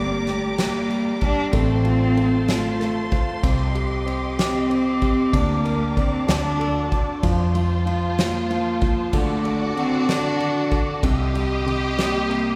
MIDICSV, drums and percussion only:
0, 0, Header, 1, 2, 480
1, 0, Start_track
1, 0, Key_signature, -2, "minor"
1, 0, Tempo, 632911
1, 1165, Time_signature, 6, 3, 24, 8
1, 9522, End_track
2, 0, Start_track
2, 0, Title_t, "Drums"
2, 203, Note_on_c, 9, 38, 35
2, 204, Note_on_c, 9, 51, 41
2, 279, Note_off_c, 9, 38, 0
2, 280, Note_off_c, 9, 51, 0
2, 441, Note_on_c, 9, 51, 62
2, 444, Note_on_c, 9, 38, 110
2, 517, Note_off_c, 9, 51, 0
2, 520, Note_off_c, 9, 38, 0
2, 685, Note_on_c, 9, 51, 38
2, 761, Note_off_c, 9, 51, 0
2, 919, Note_on_c, 9, 51, 44
2, 924, Note_on_c, 9, 36, 83
2, 995, Note_off_c, 9, 51, 0
2, 1000, Note_off_c, 9, 36, 0
2, 1159, Note_on_c, 9, 51, 68
2, 1162, Note_on_c, 9, 36, 90
2, 1235, Note_off_c, 9, 51, 0
2, 1238, Note_off_c, 9, 36, 0
2, 1401, Note_on_c, 9, 51, 44
2, 1477, Note_off_c, 9, 51, 0
2, 1648, Note_on_c, 9, 51, 40
2, 1723, Note_off_c, 9, 51, 0
2, 1883, Note_on_c, 9, 51, 65
2, 1885, Note_on_c, 9, 38, 102
2, 1958, Note_off_c, 9, 51, 0
2, 1961, Note_off_c, 9, 38, 0
2, 2130, Note_on_c, 9, 51, 40
2, 2131, Note_on_c, 9, 38, 34
2, 2206, Note_off_c, 9, 51, 0
2, 2207, Note_off_c, 9, 38, 0
2, 2364, Note_on_c, 9, 51, 45
2, 2367, Note_on_c, 9, 36, 87
2, 2439, Note_off_c, 9, 51, 0
2, 2443, Note_off_c, 9, 36, 0
2, 2605, Note_on_c, 9, 36, 100
2, 2605, Note_on_c, 9, 51, 68
2, 2681, Note_off_c, 9, 36, 0
2, 2681, Note_off_c, 9, 51, 0
2, 2846, Note_on_c, 9, 51, 42
2, 2922, Note_off_c, 9, 51, 0
2, 3090, Note_on_c, 9, 51, 42
2, 3166, Note_off_c, 9, 51, 0
2, 3329, Note_on_c, 9, 51, 63
2, 3331, Note_on_c, 9, 38, 102
2, 3404, Note_off_c, 9, 51, 0
2, 3407, Note_off_c, 9, 38, 0
2, 3571, Note_on_c, 9, 51, 40
2, 3647, Note_off_c, 9, 51, 0
2, 3805, Note_on_c, 9, 51, 46
2, 3808, Note_on_c, 9, 36, 80
2, 3881, Note_off_c, 9, 51, 0
2, 3884, Note_off_c, 9, 36, 0
2, 4046, Note_on_c, 9, 36, 96
2, 4047, Note_on_c, 9, 51, 69
2, 4122, Note_off_c, 9, 36, 0
2, 4123, Note_off_c, 9, 51, 0
2, 4288, Note_on_c, 9, 51, 43
2, 4364, Note_off_c, 9, 51, 0
2, 4528, Note_on_c, 9, 36, 84
2, 4529, Note_on_c, 9, 51, 40
2, 4603, Note_off_c, 9, 36, 0
2, 4604, Note_off_c, 9, 51, 0
2, 4765, Note_on_c, 9, 51, 64
2, 4768, Note_on_c, 9, 38, 107
2, 4841, Note_off_c, 9, 51, 0
2, 4844, Note_off_c, 9, 38, 0
2, 5012, Note_on_c, 9, 51, 41
2, 5088, Note_off_c, 9, 51, 0
2, 5246, Note_on_c, 9, 51, 46
2, 5249, Note_on_c, 9, 36, 82
2, 5322, Note_off_c, 9, 51, 0
2, 5324, Note_off_c, 9, 36, 0
2, 5485, Note_on_c, 9, 51, 65
2, 5486, Note_on_c, 9, 36, 88
2, 5561, Note_off_c, 9, 51, 0
2, 5562, Note_off_c, 9, 36, 0
2, 5725, Note_on_c, 9, 51, 45
2, 5801, Note_off_c, 9, 51, 0
2, 5967, Note_on_c, 9, 51, 43
2, 6043, Note_off_c, 9, 51, 0
2, 6207, Note_on_c, 9, 51, 62
2, 6210, Note_on_c, 9, 38, 107
2, 6283, Note_off_c, 9, 51, 0
2, 6286, Note_off_c, 9, 38, 0
2, 6451, Note_on_c, 9, 51, 41
2, 6526, Note_off_c, 9, 51, 0
2, 6684, Note_on_c, 9, 51, 45
2, 6689, Note_on_c, 9, 36, 87
2, 6760, Note_off_c, 9, 51, 0
2, 6765, Note_off_c, 9, 36, 0
2, 6924, Note_on_c, 9, 51, 72
2, 6926, Note_on_c, 9, 36, 87
2, 6999, Note_off_c, 9, 51, 0
2, 7002, Note_off_c, 9, 36, 0
2, 7167, Note_on_c, 9, 51, 43
2, 7243, Note_off_c, 9, 51, 0
2, 7412, Note_on_c, 9, 51, 41
2, 7488, Note_off_c, 9, 51, 0
2, 7649, Note_on_c, 9, 51, 64
2, 7652, Note_on_c, 9, 38, 112
2, 7725, Note_off_c, 9, 51, 0
2, 7728, Note_off_c, 9, 38, 0
2, 7890, Note_on_c, 9, 51, 43
2, 7966, Note_off_c, 9, 51, 0
2, 8125, Note_on_c, 9, 51, 44
2, 8129, Note_on_c, 9, 36, 84
2, 8201, Note_off_c, 9, 51, 0
2, 8204, Note_off_c, 9, 36, 0
2, 8366, Note_on_c, 9, 36, 95
2, 8368, Note_on_c, 9, 51, 72
2, 8442, Note_off_c, 9, 36, 0
2, 8443, Note_off_c, 9, 51, 0
2, 8609, Note_on_c, 9, 51, 47
2, 8685, Note_off_c, 9, 51, 0
2, 8855, Note_on_c, 9, 51, 41
2, 8930, Note_off_c, 9, 51, 0
2, 9089, Note_on_c, 9, 51, 62
2, 9091, Note_on_c, 9, 38, 106
2, 9164, Note_off_c, 9, 51, 0
2, 9167, Note_off_c, 9, 38, 0
2, 9334, Note_on_c, 9, 51, 42
2, 9410, Note_off_c, 9, 51, 0
2, 9522, End_track
0, 0, End_of_file